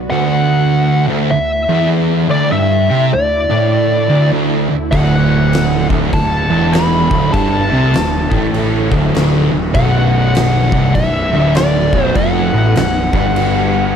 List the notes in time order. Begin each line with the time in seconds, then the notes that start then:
0.10 D2 D3 A3 E4 F#5
1.08 D2
1.31 D2 E5
1.69 E2
2.29 D2 D5
2.52 G2 E5
2.90 C3
3.13 D2 D5
3.50 A2
4.09 D2
4.32 D2
4.70 D2
4.92 D1 D2 F#5, kick, crash
5.53 snare, crash
5.90 D1 D2, kick
6.13 D1 D2 A5, kick, crash
6.50 E1 E2
6.73 B5, snare, crash
7.11 D1 D2, kick
7.32 G1 G2 A5, kick, crash
7.71 C2 C3
7.94 D1 D2, snare, crash
8.31 A1 A2, kick
8.54 crash
8.92 D1 D2, kick
9.13 D1 D2, snare, crash
9.51 D1 D2
9.74 B0 B1 B3 F#4 B4 F#5, kick, crash
10.35 snare, crash
10.72 C1 C2, kick
10.95 B0 B1 E5, kick, crash
11.33 D1 D2
11.55 D5, snare, crash
11.93 B0 B1, kick
12.04 C5
12.15 F1 F2 F#5, kick, crash
12.53 A1 A2
12.76 B0 B1, snare, crash
13.13 G1 G2, kick
13.36 crash